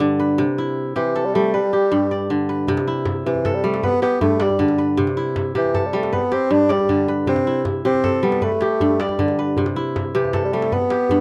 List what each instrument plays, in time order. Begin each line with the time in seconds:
Already playing: kora G2 G4 A4 B4 D5
0.00 kora D3
0.20 kora B4
0.38 kora C3
0.58 kora E4
0.96 kora C3 G4, bassoon E3
1.16 kora A4
1.25 bassoon G3
1.34 kora G3, bassoon A3
1.54 bassoon G3, kora B4
1.73 kora G4
1.92 kora G2
2.11 kora D5
2.30 kora D3
2.49 kora B4
2.68 kora C3, djembe slap, djembe bass
2.77 djembe slap, djembe tone
2.88 kora E4
3.05 djembe slap, djembe bass
3.26 kora C3, bassoon E3
3.35 djembe tone
3.45 kora A4, djembe slap, djembe bass
3.55 bassoon G3
3.64 kora G3, bassoon A3
3.74 djembe slap
3.83 bassoon B3, kora B4, djembe bass
3.93 djembe tone
4.02 bassoon B3, kora G4, djembe slap
4.12 djembe slap
4.21 kora G2, bassoon A3, djembe bass
4.40 bassoon G3, kora D5, djembe slap
4.50 djembe tone
4.59 kora D3, djembe bass
4.68 djembe slap
4.78 kora B4
4.97 kora C3, djembe slap, djembe bass
5.07 djembe slap, djembe tone
5.17 kora E4
5.36 djembe slap, djembe bass
5.55 kora C3 G4, bassoon E3
5.65 djembe tone
5.74 kora A4, djembe slap, djembe bass
5.86 bassoon G3
5.93 kora G3, bassoon A3
6.03 djembe slap
6.13 bassoon B3, kora B4, djembe bass
6.22 djembe tone
6.32 bassoon C4, kora G4, djembe slap
6.41 djembe slap
6.51 kora G2, bassoon D4
6.69 bassoon G3, kora D5, djembe slap
6.80 djembe tone
6.89 kora D3, djembe bass
7.08 kora B4
7.26 kora C3, bassoon C4, djembe slap, djembe bass
7.36 djembe slap, djembe tone
7.47 kora E4
7.65 djembe slap, djembe bass
7.85 kora C3 G4, bassoon C4
7.94 djembe tone
8.04 kora A4, djembe slap, djembe bass
8.23 kora G3, bassoon B3
8.32 djembe slap
8.41 bassoon A3, kora B4, djembe bass
8.52 djembe tone
8.61 kora G4, djembe slap
8.71 djembe slap
8.80 kora G2, djembe bass
9.00 bassoon G3, kora D5, djembe slap
9.09 djembe tone
9.19 kora D3, djembe bass
9.28 djembe slap
9.39 kora B4
9.57 kora C3, djembe bass
9.66 djembe slap, djembe tone
9.76 kora E4, djembe slap
9.86 djembe slap
9.96 djembe slap, djembe bass
10.06 djembe slap
10.14 kora C3 G4, bassoon E3
10.25 djembe tone
10.33 kora A4, djembe slap, djembe bass
10.45 bassoon G3
10.53 kora G3, bassoon A3
10.62 djembe slap
10.72 bassoon B3, kora B4, djembe slap, djembe bass
10.82 djembe tone
10.90 kora G4, djembe slap
11.09 kora G2, djembe bass